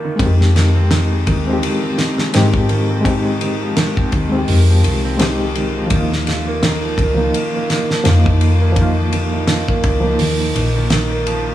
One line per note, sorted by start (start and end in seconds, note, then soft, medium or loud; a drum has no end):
0.00 0.05 D#3 medium
0.00 0.14 F3 medium
0.00 0.22 F3 medium
0.00 0.16 A#3 medium
0.00 0.21 A#3 medium
0.00 0.17 D#4 medium
0.00 0.22 D#4 medium
0.00 0.19 F4 medium
0.00 0.22 F4 medium
0.05 0.18 D#3 medium
0.16 1.24 F2 medium
0.16 0.31 D#3 medium
0.16 1.41 G#3 medium
0.16 1.42 C4 medium
0.16 kick loud
0.16 ride medium
0.22 1.44 D#4 medium
0.22 1.45 G4 loud
0.40 0.54 F3 medium
0.40 snare soft
0.55 0.67 D#3 medium
0.55 snare medium
0.55 ride medium
0.75 0.89 C4 medium
0.91 1.11 D#4 medium
0.91 snare loud
0.91 ride medium
1.12 1.26 G#3 medium
1.27 1.59 D#2 medium
1.27 1.38 D#3 medium
1.27 kick medium
1.27 ride medium
1.43 1.61 F3 medium
1.43 2.28 G#3 medium
1.43 2.30 C4 medium
1.50 2.32 D#4 medium
1.50 2.33 G4 medium
1.62 1.74 D#3 medium
1.62 ride medium
1.83 1.97 C4 medium
1.98 2.18 D#4 medium
1.98 snare medium
1.98 ride medium
2.18 2.33 G#3 medium
2.18 snare soft
2.32 4.10 G#2 medium
2.32 2.45 D#3 medium
2.32 3.00 G#3 medium
2.32 3.02 C4 medium
2.32 3.02 D#4 medium
2.32 snare loud
2.32 ride loud
2.37 3.03 G4 loud
2.54 2.68 F3 medium
2.54 kick loud
2.69 2.81 D#3 medium
2.69 ride medium
2.90 3.04 C4 medium
3.01 4.26 G#3 medium
3.01 4.28 C4 medium
3.01 3.25 D#4 medium
3.05 4.29 D#4 medium
3.05 kick loud
3.05 ride medium
3.11 4.31 G4 medium
3.25 3.40 G#3 medium
3.41 3.53 D#3 medium
3.41 ride medium
3.61 3.75 F3 medium
3.76 3.88 D#3 medium
3.76 snare loud
3.76 ride medium
3.97 4.11 C4 medium
3.97 kick loud
4.12 4.45 D#2 medium
4.12 4.32 D#4 medium
4.12 kick loud
4.12 ride medium
4.29 5.14 G#3 medium
4.29 5.15 C4 medium
4.33 4.48 G#3 medium
4.33 5.17 D#4 medium
4.38 5.19 G4 medium
4.48 4.81 F2 medium
4.48 4.60 D#3 medium
4.48 open hi-hat medium
4.69 4.83 F3 medium
4.84 5.88 C2 medium
4.84 4.96 D#3 medium
4.84 ride medium
5.05 5.18 C4 medium
5.17 5.86 G#3 medium
5.17 5.87 C4 medium
5.17 5.39 D#4 medium
5.17 5.88 D#4 medium
5.17 snare loud
5.17 ride medium
5.22 5.89 G4 loud
5.41 5.55 G#3 medium
5.55 5.67 D#3 medium
5.55 ride medium
5.76 5.90 F3 medium
5.86 7.12 F3 medium
5.86 7.13 A#3 medium
5.86 ride medium
5.91 6.95 D#2 medium
5.91 6.03 D#3 medium
5.91 7.15 D#4 medium
5.91 kick loud
5.96 7.16 F4 loud
6.12 6.26 D#4 medium
6.12 snare soft
6.27 6.47 F4 medium
6.27 snare soft
6.27 ride medium
6.48 6.62 A#3 medium
6.63 6.75 D#3 medium
6.63 snare loud
6.63 ride medium
6.84 6.97 F3 medium
6.98 7.30 C#2 medium
6.98 7.10 D#3 medium
6.98 kick medium
6.98 ride medium
7.15 8.00 F3 medium
7.15 8.01 A#3 medium
7.19 7.33 D#4 medium
7.19 8.03 D#4 medium
7.24 8.05 F4 medium
7.34 7.54 F4 medium
7.34 ride medium
7.55 7.69 A#3 medium
7.70 7.82 D#3 medium
7.70 snare medium
7.70 ride medium
7.90 8.04 F3 medium
7.90 snare soft
8.04 9.81 F2 medium
8.04 8.17 D#3 medium
8.04 8.71 F3 medium
8.04 8.73 A#3 medium
8.04 8.74 D#4 medium
8.04 snare loud
8.04 ride medium
8.09 8.75 F4 loud
8.26 8.40 D#4 medium
8.26 kick loud
8.41 8.61 F4 medium
8.41 ride medium
8.62 8.76 A#3 medium
8.72 9.97 F3 medium
8.72 9.99 A#3 medium
8.76 8.89 D#3 medium
8.76 10.01 D#4 medium
8.76 kick loud
8.76 ride medium
8.82 10.02 F4 medium
8.98 9.11 F3 medium
9.13 9.24 D#3 medium
9.13 ride medium
9.34 9.47 D#4 medium
9.47 9.68 F4 medium
9.47 snare medium
9.47 ride medium
9.68 9.83 A#3 medium
9.68 kick loud
9.83 10.16 C#2 medium
9.83 9.95 D#3 medium
9.83 kick loud
9.83 ride medium
10.00 10.85 F3 medium
10.00 10.18 F3 medium
10.00 10.87 A#3 medium
10.07 10.89 D#4 medium
10.07 10.90 F4 medium
10.19 10.52 D#2 medium
10.19 10.31 D#3 medium
10.19 open hi-hat medium
10.40 10.54 D#4 medium
10.55 11.55 A#1 medium
10.55 10.75 D#4 medium
10.55 ride medium
10.76 10.89 D#3 medium
10.90 11.09 D#3 medium
10.90 snare loud
10.90 ride medium
11.11 11.26 A#4 medium
11.26 11.45 F3 medium
11.26 ride medium
11.47 11.55 F3 medium